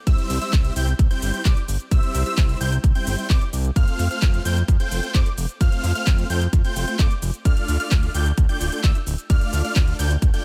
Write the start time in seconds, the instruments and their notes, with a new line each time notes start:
0.07 analog synth bass C2, supersaw synth G3 C4 E4 C5 E5, analog synth lead E6, kick, closed hi-hat, shaker
0.18 closed hi-hat, shaker
0.30 analog synth bass C2, open hi-hat, shaker
0.41 supersaw synth G3 C4 E4 C5 E5, analog synth lead E6, closed hi-hat, shaker
0.53 analog synth bass C2, kick, clap, closed hi-hat, shaker
0.65 closed hi-hat, shaker
0.76 analog synth bass C2, supersaw synth G3 C4 E4 C5 G5, analog synth lead G6, open hi-hat, shaker
0.88 closed hi-hat, shaker
0.99 analog synth bass C2, kick, closed hi-hat, shaker
1.11 supersaw synth G3 C4 E4 C5 G5, analog synth lead G6, closed hi-hat, shaker
1.22 analog synth bass G1, open hi-hat, shaker
1.34 supersaw synth G3 C4 E4 C5 G5, analog synth lead G6, closed hi-hat, shaker
1.45 analog synth bass C2, supersaw synth G3 C4 E4 C5 D5, analog synth lead D6, kick, clap, closed hi-hat, shaker
1.57 closed hi-hat, shaker
1.68 analog synth bass G1, open hi-hat, shaker
1.80 closed hi-hat, shaker
1.91 analog synth bass C2, supersaw synth G3 C4 E4 C5 E5, analog synth lead E6, kick, closed hi-hat, shaker
2.03 closed hi-hat, shaker
2.15 analog synth bass C2, open hi-hat, shaker
2.26 supersaw synth G3 C4 E4 C5 E5, analog synth lead E6, closed hi-hat, shaker
2.38 analog synth bass C2, kick, clap, closed hi-hat, shaker
2.49 closed hi-hat, shaker
2.61 analog synth bass C2, supersaw synth G3 C4 E4 C5 G5, analog synth lead G6, open hi-hat, shaker
2.72 closed hi-hat, shaker
2.84 analog synth bass C2, kick, closed hi-hat, shaker
2.95 supersaw synth G3 C4 E4 C5 G5, analog synth lead G6, closed hi-hat, shaker
3.07 analog synth bass G1, open hi-hat, shaker
3.18 supersaw synth G3 C4 E4 C5 G5, analog synth lead G6, closed hi-hat, shaker
3.30 analog synth bass C2, supersaw synth G3 C4 E4 C5 D5, analog synth lead D6, kick, clap, open hi-hat, shaker
3.41 closed hi-hat, shaker
3.53 analog synth bass C2, open hi-hat, shaker
3.65 closed hi-hat, shaker
3.76 analog synth bass F2, supersaw synth A3 C4 F4 C5 F5, analog synth lead F6, kick, closed hi-hat, shaker
3.88 closed hi-hat, shaker
3.99 analog synth bass F2, open hi-hat, shaker
4.11 supersaw synth A3 C4 F4 C5 F5, analog synth lead F6, closed hi-hat, shaker
4.22 analog synth bass F2, kick, clap, closed hi-hat, shaker
4.34 closed hi-hat, shaker
4.45 analog synth bass F2, supersaw synth A3 C4 F4 C5 G5, analog synth lead G6, open hi-hat, shaker
4.57 closed hi-hat, shaker
4.68 analog synth bass F2, kick, closed hi-hat, shaker
4.80 supersaw synth A3 C4 F4 C5 G5, analog synth lead G6, closed hi-hat, shaker
4.91 analog synth bass F1, open hi-hat, shaker
5.03 supersaw synth A3 C4 F4 C5 G5, analog synth lead G6, closed hi-hat, shaker
5.14 analog synth bass F2, supersaw synth A3 C4 F4 C5 D5, analog synth lead D6, kick, clap, closed hi-hat, shaker
5.26 closed hi-hat, shaker
5.38 analog synth bass F1, open hi-hat, shaker
5.49 closed hi-hat, shaker
5.61 analog synth bass F2, supersaw synth A3 C4 F4 C5 F5, analog synth lead F6, kick, closed hi-hat, shaker
5.72 closed hi-hat, shaker
5.84 analog synth bass F2, open hi-hat, shaker
5.95 supersaw synth A3 C4 F4 C5 F5, analog synth lead F6, closed hi-hat, shaker
6.07 analog synth bass F2, kick, clap, closed hi-hat, shaker
6.18 closed hi-hat, shaker
6.30 analog synth bass F2, supersaw synth A3 C4 F4 C5 G5, analog synth lead G6, open hi-hat, shaker
6.41 closed hi-hat, shaker
6.53 analog synth bass F2, kick, closed hi-hat, shaker
6.64 supersaw synth A3 C4 F4 C5 G5, analog synth lead G6, closed hi-hat, shaker
6.76 analog synth bass F1, open hi-hat, shaker
6.88 supersaw synth A3 C4 F4 C5 G5, analog synth lead G6, closed hi-hat, shaker
6.99 analog synth bass F2, supersaw synth A3 C4 F4 C5 D5, analog synth lead D6, kick, clap, closed hi-hat, shaker
7.11 closed hi-hat, shaker
7.22 analog synth bass F1, open hi-hat, shaker
7.34 closed hi-hat, shaker
7.45 analog synth bass D2, supersaw synth A3 D4 F4 D5 F5, analog synth lead F6, kick, closed hi-hat, shaker
7.57 closed hi-hat, shaker
7.68 analog synth bass D2, open hi-hat, shaker
7.80 supersaw synth A3 D4 F4 D5 F5, analog synth lead F6, closed hi-hat, shaker
7.91 analog synth bass D2, kick, clap, closed hi-hat, shaker
8.03 closed hi-hat, shaker
8.14 analog synth bass D2, supersaw synth A3 D4 F4 D5 G5, analog synth lead G6, open hi-hat, shaker
8.26 closed hi-hat, shaker
8.38 analog synth bass D2, kick, closed hi-hat, shaker
8.49 supersaw synth A3 D4 F4 D5 G5, analog synth lead G6, closed hi-hat, shaker
8.61 analog synth bass D1, open hi-hat, shaker
8.72 supersaw synth A3 D4 F4 D5 G5, analog synth lead G6, closed hi-hat, shaker
8.84 analog synth bass D2, supersaw synth A3 D4 F4 D5 E5, analog synth lead E6, kick, clap, closed hi-hat, shaker
8.95 closed hi-hat, shaker
9.07 analog synth bass D1, open hi-hat, shaker
9.18 closed hi-hat, shaker
9.30 analog synth bass D2, supersaw synth A3 D4 F4 D5 F5, analog synth lead F6, kick, closed hi-hat, shaker
9.41 closed hi-hat, shaker
9.53 analog synth bass D2, open hi-hat, shaker
9.64 supersaw synth A3 D4 F4 D5 F5, analog synth lead F6, closed hi-hat, shaker
9.76 analog synth bass D2, kick, clap, closed hi-hat, shaker
9.88 closed hi-hat, shaker
9.99 analog synth bass D2, supersaw synth A3 D4 F4 D5 G5, analog synth lead G6, open hi-hat, shaker
10.11 closed hi-hat, shaker
10.22 analog synth bass D2, kick, closed hi-hat, shaker
10.34 supersaw synth A3 D4 F4 D5 G5, analog synth lead G6, closed hi-hat, shaker